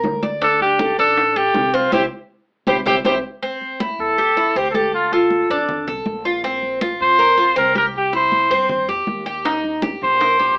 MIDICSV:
0, 0, Header, 1, 5, 480
1, 0, Start_track
1, 0, Tempo, 376412
1, 537, Time_signature, 4, 2, 24, 8
1, 13498, End_track
2, 0, Start_track
2, 0, Title_t, "Cuban tres"
2, 0, Program_c, 0, 25
2, 0, Note_on_c, 0, 70, 75
2, 279, Note_off_c, 0, 70, 0
2, 289, Note_on_c, 0, 74, 76
2, 526, Note_off_c, 0, 74, 0
2, 530, Note_on_c, 0, 62, 77
2, 999, Note_off_c, 0, 62, 0
2, 1014, Note_on_c, 0, 69, 70
2, 1248, Note_off_c, 0, 69, 0
2, 1261, Note_on_c, 0, 62, 80
2, 1724, Note_off_c, 0, 62, 0
2, 1736, Note_on_c, 0, 69, 75
2, 2202, Note_off_c, 0, 69, 0
2, 2213, Note_on_c, 0, 60, 89
2, 2448, Note_off_c, 0, 60, 0
2, 2452, Note_on_c, 0, 64, 98
2, 2456, Note_on_c, 0, 67, 93
2, 2463, Note_on_c, 0, 72, 84
2, 2609, Note_off_c, 0, 64, 0
2, 2609, Note_off_c, 0, 67, 0
2, 2610, Note_off_c, 0, 72, 0
2, 3408, Note_on_c, 0, 67, 93
2, 3413, Note_on_c, 0, 72, 85
2, 3418, Note_on_c, 0, 64, 84
2, 3566, Note_off_c, 0, 64, 0
2, 3566, Note_off_c, 0, 67, 0
2, 3566, Note_off_c, 0, 72, 0
2, 3648, Note_on_c, 0, 64, 93
2, 3651, Note_on_c, 0, 72, 92
2, 3660, Note_on_c, 0, 67, 81
2, 3806, Note_off_c, 0, 64, 0
2, 3806, Note_off_c, 0, 72, 0
2, 3808, Note_off_c, 0, 67, 0
2, 3890, Note_on_c, 0, 67, 101
2, 3895, Note_on_c, 0, 72, 88
2, 3898, Note_on_c, 0, 64, 83
2, 4047, Note_off_c, 0, 64, 0
2, 4048, Note_off_c, 0, 67, 0
2, 4048, Note_off_c, 0, 72, 0
2, 4368, Note_on_c, 0, 60, 74
2, 4837, Note_off_c, 0, 60, 0
2, 4855, Note_on_c, 0, 64, 74
2, 5320, Note_off_c, 0, 64, 0
2, 5332, Note_on_c, 0, 67, 69
2, 5566, Note_off_c, 0, 67, 0
2, 5570, Note_on_c, 0, 64, 73
2, 5805, Note_off_c, 0, 64, 0
2, 5818, Note_on_c, 0, 60, 81
2, 6048, Note_off_c, 0, 60, 0
2, 6053, Note_on_c, 0, 69, 74
2, 6519, Note_off_c, 0, 69, 0
2, 6538, Note_on_c, 0, 65, 78
2, 7001, Note_off_c, 0, 65, 0
2, 7021, Note_on_c, 0, 62, 87
2, 7482, Note_off_c, 0, 62, 0
2, 7495, Note_on_c, 0, 69, 72
2, 7959, Note_off_c, 0, 69, 0
2, 7973, Note_on_c, 0, 65, 76
2, 8205, Note_off_c, 0, 65, 0
2, 8213, Note_on_c, 0, 60, 82
2, 8678, Note_off_c, 0, 60, 0
2, 8692, Note_on_c, 0, 65, 70
2, 9158, Note_off_c, 0, 65, 0
2, 9167, Note_on_c, 0, 70, 70
2, 9402, Note_off_c, 0, 70, 0
2, 9406, Note_on_c, 0, 65, 74
2, 9636, Note_off_c, 0, 65, 0
2, 9641, Note_on_c, 0, 60, 84
2, 9879, Note_off_c, 0, 60, 0
2, 9888, Note_on_c, 0, 67, 72
2, 10356, Note_off_c, 0, 67, 0
2, 10366, Note_on_c, 0, 64, 71
2, 10835, Note_off_c, 0, 64, 0
2, 10849, Note_on_c, 0, 60, 86
2, 11317, Note_off_c, 0, 60, 0
2, 11332, Note_on_c, 0, 67, 71
2, 11794, Note_off_c, 0, 67, 0
2, 11809, Note_on_c, 0, 67, 73
2, 12044, Note_off_c, 0, 67, 0
2, 12052, Note_on_c, 0, 63, 84
2, 12519, Note_off_c, 0, 63, 0
2, 12532, Note_on_c, 0, 67, 69
2, 13000, Note_off_c, 0, 67, 0
2, 13013, Note_on_c, 0, 70, 68
2, 13248, Note_off_c, 0, 70, 0
2, 13255, Note_on_c, 0, 67, 70
2, 13489, Note_off_c, 0, 67, 0
2, 13498, End_track
3, 0, Start_track
3, 0, Title_t, "Trumpet"
3, 0, Program_c, 1, 56
3, 548, Note_on_c, 1, 69, 108
3, 766, Note_off_c, 1, 69, 0
3, 789, Note_on_c, 1, 67, 93
3, 1230, Note_off_c, 1, 67, 0
3, 1268, Note_on_c, 1, 69, 106
3, 1746, Note_on_c, 1, 67, 104
3, 1765, Note_off_c, 1, 69, 0
3, 2229, Note_on_c, 1, 65, 86
3, 2248, Note_off_c, 1, 67, 0
3, 2455, Note_off_c, 1, 65, 0
3, 2462, Note_on_c, 1, 67, 90
3, 2576, Note_off_c, 1, 67, 0
3, 3418, Note_on_c, 1, 67, 91
3, 3532, Note_off_c, 1, 67, 0
3, 3662, Note_on_c, 1, 67, 99
3, 3775, Note_off_c, 1, 67, 0
3, 3895, Note_on_c, 1, 67, 87
3, 4011, Note_off_c, 1, 67, 0
3, 5112, Note_on_c, 1, 69, 103
3, 5828, Note_on_c, 1, 67, 95
3, 5847, Note_off_c, 1, 69, 0
3, 6001, Note_off_c, 1, 67, 0
3, 6008, Note_on_c, 1, 69, 67
3, 6062, Note_on_c, 1, 67, 85
3, 6081, Note_off_c, 1, 69, 0
3, 6298, Note_off_c, 1, 67, 0
3, 6304, Note_on_c, 1, 65, 93
3, 6542, Note_on_c, 1, 69, 85
3, 6561, Note_off_c, 1, 65, 0
3, 7497, Note_off_c, 1, 69, 0
3, 8952, Note_on_c, 1, 72, 110
3, 9612, Note_off_c, 1, 72, 0
3, 9663, Note_on_c, 1, 70, 98
3, 9881, Note_off_c, 1, 70, 0
3, 9920, Note_on_c, 1, 70, 91
3, 10021, Note_off_c, 1, 70, 0
3, 10163, Note_on_c, 1, 67, 91
3, 10372, Note_off_c, 1, 67, 0
3, 10404, Note_on_c, 1, 72, 92
3, 11298, Note_off_c, 1, 72, 0
3, 12800, Note_on_c, 1, 72, 104
3, 13460, Note_off_c, 1, 72, 0
3, 13498, End_track
4, 0, Start_track
4, 0, Title_t, "Upright bass"
4, 0, Program_c, 2, 32
4, 55, Note_on_c, 2, 38, 98
4, 1181, Note_off_c, 2, 38, 0
4, 1256, Note_on_c, 2, 33, 89
4, 1926, Note_off_c, 2, 33, 0
4, 1971, Note_on_c, 2, 36, 97
4, 2420, Note_off_c, 2, 36, 0
4, 2456, Note_on_c, 2, 36, 93
4, 2635, Note_off_c, 2, 36, 0
4, 3411, Note_on_c, 2, 36, 95
4, 3592, Note_off_c, 2, 36, 0
4, 3652, Note_on_c, 2, 36, 89
4, 3832, Note_off_c, 2, 36, 0
4, 3888, Note_on_c, 2, 36, 100
4, 4070, Note_off_c, 2, 36, 0
4, 5091, Note_on_c, 2, 40, 86
4, 5762, Note_off_c, 2, 40, 0
4, 5811, Note_on_c, 2, 38, 90
4, 6936, Note_off_c, 2, 38, 0
4, 7012, Note_on_c, 2, 41, 87
4, 7458, Note_off_c, 2, 41, 0
4, 7494, Note_on_c, 2, 36, 66
4, 7716, Note_off_c, 2, 36, 0
4, 7728, Note_on_c, 2, 34, 93
4, 8855, Note_off_c, 2, 34, 0
4, 8927, Note_on_c, 2, 41, 84
4, 9599, Note_off_c, 2, 41, 0
4, 9648, Note_on_c, 2, 36, 99
4, 10775, Note_off_c, 2, 36, 0
4, 10845, Note_on_c, 2, 43, 86
4, 11295, Note_off_c, 2, 43, 0
4, 11325, Note_on_c, 2, 40, 68
4, 11552, Note_off_c, 2, 40, 0
4, 11566, Note_on_c, 2, 39, 92
4, 12697, Note_off_c, 2, 39, 0
4, 12773, Note_on_c, 2, 34, 91
4, 13445, Note_off_c, 2, 34, 0
4, 13498, End_track
5, 0, Start_track
5, 0, Title_t, "Drums"
5, 46, Note_on_c, 9, 63, 78
5, 55, Note_on_c, 9, 60, 35
5, 55, Note_on_c, 9, 61, 78
5, 174, Note_off_c, 9, 63, 0
5, 182, Note_off_c, 9, 60, 0
5, 182, Note_off_c, 9, 61, 0
5, 289, Note_on_c, 9, 63, 81
5, 293, Note_on_c, 9, 60, 35
5, 417, Note_off_c, 9, 63, 0
5, 421, Note_off_c, 9, 60, 0
5, 532, Note_on_c, 9, 63, 35
5, 533, Note_on_c, 9, 60, 65
5, 659, Note_off_c, 9, 63, 0
5, 660, Note_off_c, 9, 60, 0
5, 770, Note_on_c, 9, 63, 34
5, 780, Note_on_c, 9, 60, 36
5, 897, Note_off_c, 9, 63, 0
5, 908, Note_off_c, 9, 60, 0
5, 1012, Note_on_c, 9, 63, 88
5, 1014, Note_on_c, 9, 60, 57
5, 1139, Note_off_c, 9, 63, 0
5, 1142, Note_off_c, 9, 60, 0
5, 1251, Note_on_c, 9, 63, 34
5, 1378, Note_off_c, 9, 63, 0
5, 1496, Note_on_c, 9, 63, 38
5, 1498, Note_on_c, 9, 60, 65
5, 1623, Note_off_c, 9, 63, 0
5, 1626, Note_off_c, 9, 60, 0
5, 1730, Note_on_c, 9, 63, 35
5, 1857, Note_off_c, 9, 63, 0
5, 1969, Note_on_c, 9, 63, 82
5, 1978, Note_on_c, 9, 60, 32
5, 1978, Note_on_c, 9, 61, 84
5, 2097, Note_off_c, 9, 63, 0
5, 2105, Note_off_c, 9, 60, 0
5, 2105, Note_off_c, 9, 61, 0
5, 2212, Note_on_c, 9, 63, 33
5, 2221, Note_on_c, 9, 60, 34
5, 2340, Note_off_c, 9, 63, 0
5, 2349, Note_off_c, 9, 60, 0
5, 2449, Note_on_c, 9, 63, 100
5, 2457, Note_on_c, 9, 61, 98
5, 2577, Note_off_c, 9, 63, 0
5, 2584, Note_off_c, 9, 61, 0
5, 3401, Note_on_c, 9, 63, 109
5, 3413, Note_on_c, 9, 61, 93
5, 3529, Note_off_c, 9, 63, 0
5, 3540, Note_off_c, 9, 61, 0
5, 3642, Note_on_c, 9, 63, 91
5, 3653, Note_on_c, 9, 61, 92
5, 3770, Note_off_c, 9, 63, 0
5, 3780, Note_off_c, 9, 61, 0
5, 3884, Note_on_c, 9, 63, 99
5, 3896, Note_on_c, 9, 61, 98
5, 4012, Note_off_c, 9, 63, 0
5, 4023, Note_off_c, 9, 61, 0
5, 4367, Note_on_c, 9, 63, 35
5, 4495, Note_off_c, 9, 63, 0
5, 4607, Note_on_c, 9, 63, 35
5, 4734, Note_off_c, 9, 63, 0
5, 4850, Note_on_c, 9, 63, 89
5, 4977, Note_off_c, 9, 63, 0
5, 5085, Note_on_c, 9, 63, 36
5, 5212, Note_off_c, 9, 63, 0
5, 5326, Note_on_c, 9, 63, 38
5, 5453, Note_off_c, 9, 63, 0
5, 5566, Note_on_c, 9, 63, 31
5, 5694, Note_off_c, 9, 63, 0
5, 5805, Note_on_c, 9, 63, 35
5, 5933, Note_off_c, 9, 63, 0
5, 6047, Note_on_c, 9, 63, 76
5, 6175, Note_off_c, 9, 63, 0
5, 6290, Note_on_c, 9, 63, 35
5, 6418, Note_off_c, 9, 63, 0
5, 6526, Note_on_c, 9, 63, 36
5, 6653, Note_off_c, 9, 63, 0
5, 6765, Note_on_c, 9, 63, 53
5, 6892, Note_off_c, 9, 63, 0
5, 7011, Note_on_c, 9, 63, 35
5, 7139, Note_off_c, 9, 63, 0
5, 7252, Note_on_c, 9, 63, 39
5, 7252, Note_on_c, 9, 64, 87
5, 7379, Note_off_c, 9, 63, 0
5, 7379, Note_off_c, 9, 64, 0
5, 7491, Note_on_c, 9, 63, 33
5, 7491, Note_on_c, 9, 64, 70
5, 7619, Note_off_c, 9, 63, 0
5, 7619, Note_off_c, 9, 64, 0
5, 7723, Note_on_c, 9, 63, 84
5, 7851, Note_off_c, 9, 63, 0
5, 7961, Note_on_c, 9, 63, 33
5, 8088, Note_off_c, 9, 63, 0
5, 8205, Note_on_c, 9, 63, 38
5, 8333, Note_off_c, 9, 63, 0
5, 8448, Note_on_c, 9, 63, 36
5, 8575, Note_off_c, 9, 63, 0
5, 8687, Note_on_c, 9, 63, 83
5, 8815, Note_off_c, 9, 63, 0
5, 8926, Note_on_c, 9, 63, 34
5, 9053, Note_off_c, 9, 63, 0
5, 9166, Note_on_c, 9, 63, 39
5, 9293, Note_off_c, 9, 63, 0
5, 9398, Note_on_c, 9, 63, 34
5, 9526, Note_off_c, 9, 63, 0
5, 9644, Note_on_c, 9, 63, 36
5, 9772, Note_off_c, 9, 63, 0
5, 9883, Note_on_c, 9, 63, 76
5, 10010, Note_off_c, 9, 63, 0
5, 10126, Note_on_c, 9, 63, 34
5, 10254, Note_off_c, 9, 63, 0
5, 10365, Note_on_c, 9, 63, 31
5, 10492, Note_off_c, 9, 63, 0
5, 10608, Note_on_c, 9, 63, 58
5, 10736, Note_off_c, 9, 63, 0
5, 10848, Note_on_c, 9, 63, 33
5, 10976, Note_off_c, 9, 63, 0
5, 11086, Note_on_c, 9, 63, 38
5, 11086, Note_on_c, 9, 64, 92
5, 11213, Note_off_c, 9, 63, 0
5, 11213, Note_off_c, 9, 64, 0
5, 11328, Note_on_c, 9, 63, 32
5, 11455, Note_off_c, 9, 63, 0
5, 11566, Note_on_c, 9, 63, 82
5, 11694, Note_off_c, 9, 63, 0
5, 11803, Note_on_c, 9, 63, 33
5, 11931, Note_off_c, 9, 63, 0
5, 12050, Note_on_c, 9, 63, 36
5, 12058, Note_on_c, 9, 60, 73
5, 12177, Note_off_c, 9, 63, 0
5, 12186, Note_off_c, 9, 60, 0
5, 12289, Note_on_c, 9, 63, 32
5, 12296, Note_on_c, 9, 60, 38
5, 12417, Note_off_c, 9, 63, 0
5, 12424, Note_off_c, 9, 60, 0
5, 12526, Note_on_c, 9, 63, 95
5, 12536, Note_on_c, 9, 60, 59
5, 12654, Note_off_c, 9, 63, 0
5, 12664, Note_off_c, 9, 60, 0
5, 12771, Note_on_c, 9, 63, 35
5, 12776, Note_on_c, 9, 60, 32
5, 12898, Note_off_c, 9, 63, 0
5, 12903, Note_off_c, 9, 60, 0
5, 13009, Note_on_c, 9, 63, 39
5, 13023, Note_on_c, 9, 60, 67
5, 13137, Note_off_c, 9, 63, 0
5, 13150, Note_off_c, 9, 60, 0
5, 13250, Note_on_c, 9, 63, 34
5, 13261, Note_on_c, 9, 60, 37
5, 13377, Note_off_c, 9, 63, 0
5, 13388, Note_off_c, 9, 60, 0
5, 13498, End_track
0, 0, End_of_file